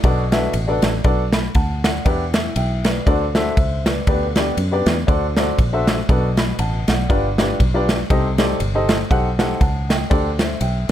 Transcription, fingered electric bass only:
0.04 B1
0.54 A1
0.83 A1
1.05 B1
1.55 D2
2.06 E2
2.56 B1
3.07 D2
3.57 C#2
4.07 D2
4.57 F#2
4.86 E2
5.08 D2
5.59 A#1
6.09 B1
6.59 A1
6.88 B1
7.10 G1
7.60 B1
8.11 C2
8.60 G1
9.11 B1
9.61 C#2
10.11 D2
10.61 B1

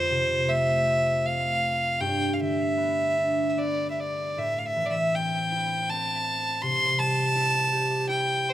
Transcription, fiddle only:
Already playing: C5
0.49 E5
1.26 F5
2.01 G5
2.33 F5
2.40 E5
3.49 E5
3.58 D5
3.90 E5
3.99 D5
4.38 E5
4.59 F5
4.65 E5
4.85 D5
4.91 E5
5.16 G5
5.90 A5
6.62 C6
6.99 A5
8.09 G5
8.50 C5

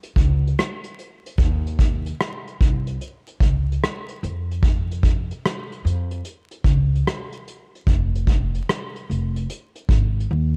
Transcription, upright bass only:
0.16 C#2
1.38 D#2
2.61 C2
3.40 C#2
4.23 F2
5.85 F2
6.65 C#2
7.87 F1
9.09 F1
9.89 G#1
10.31 D#2

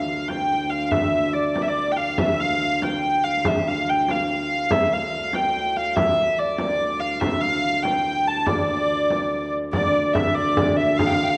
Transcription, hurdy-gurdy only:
Already playing: F5
0.28 G5
0.70 F5
0.91 E5
1.33 D5
1.54 D5
1.62 E5
1.68 D5
1.92 G5
1.97 F5
2.18 E5
2.40 F5
2.83 G5
3.24 F5
3.47 E5
3.68 F5
3.90 G5
4.11 F5
4.72 E5
4.93 F5
5.35 G5
5.76 F5
5.96 E5
6.39 D5
6.59 D5
7.00 F5
7.20 E5
7.41 F5
7.83 G5
8.27 A5
8.47 D5
9.73 D5
10.13 E5
10.35 D5
10.77 E5
10.97 F5

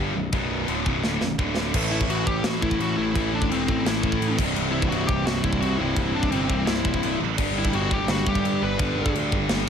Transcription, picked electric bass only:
Already playing: G1
0.15 B0
0.33 B0
0.68 D1
0.86 B0
1.04 D1
1.21 B0
1.39 D1
1.74 A1
2.08 A1
2.27 A1
2.44 A1
2.63 A1
2.80 A1
2.97 A1
3.15 A1
3.32 A1
3.50 E1
3.69 A1
3.85 A1
4.03 A1
4.20 A1
4.38 C1
4.56 C1
4.90 C1
5.08 C1
5.25 C1
5.44 C1
5.60 C2
5.78 C1
5.96 C1
6.14 C1
6.31 G1
6.50 C1
6.66 C1
6.85 C1
7.02 C1
7.20 A1
7.38 G1
7.73 G1
7.91 G1
8.08 G1
8.27 G1
8.44 G2
8.62 G1
8.79 G1
8.97 G1
9.15 D2
9.32 G1
9.50 G1

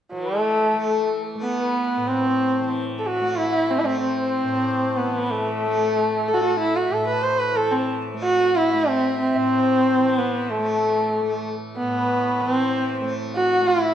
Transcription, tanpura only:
0.12 E3
0.73 A3
1.35 A3
1.97 A2
2.61 E3
3.20 A3
3.83 A3
4.44 A2
5.06 E3
5.65 A3
6.28 A3
6.89 A2
7.52 E3
8.13 A3
8.72 A3
9.34 A2
9.97 E3
10.59 A3
11.21 A3
11.82 A2
12.41 E3
13.01 A3
13.60 A3

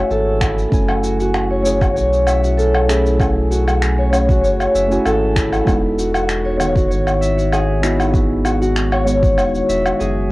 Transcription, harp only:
Already playing: E4 F#4 C#5 E5
0.11 A4
0.42 E4
1.03 F#4
1.20 F#4
1.50 C#5
1.65 C#5
1.81 F#4
1.96 C#5
2.26 E5
2.43 F#4
2.57 A4
2.89 E4
3.51 F#4
3.67 F#4
3.98 C#5
4.13 C#5
4.29 F#4
4.44 C#5
4.75 E5
4.91 F#4
5.06 A4
5.37 E4
5.99 F#4
6.14 F#4
6.45 C#5
6.60 C#5
6.76 F#4
6.91 C#5
7.21 E5
7.38 F#4
7.52 G#4
7.83 E4
8.45 F#4
8.61 F#4
8.92 C#5
9.07 C#5
9.23 F#4
9.38 C#5
9.69 E5
9.85 F#4
9.99 G#4

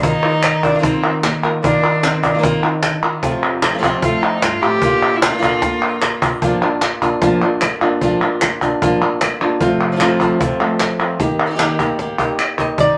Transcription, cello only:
0.03 D#4
0.63 D4
0.83 C4
1.24 A#3
1.63 D4
2.03 C4
2.23 D4
2.43 C4
4.03 F4
4.22 D#4
4.43 F4
4.62 G4
5.16 E4
5.21 F4
12.79 D#4

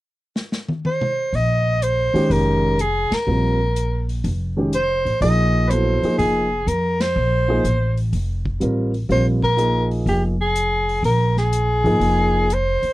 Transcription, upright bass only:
1.33 A#1
2.14 muted upright bass stroke
2.30 F1
3.11 muted upright bass stroke
3.27 A#1
4.24 F1
5.05 A1
5.21 A#1
6.03 muted upright bass stroke
6.19 F1
6.67 F2
7.16 A#1
7.64 A1
8.13 F1
8.62 A1
9.09 A#1
10.06 F1
11.03 A#1
11.84 G#1
12.00 F1
12.83 muted upright bass stroke

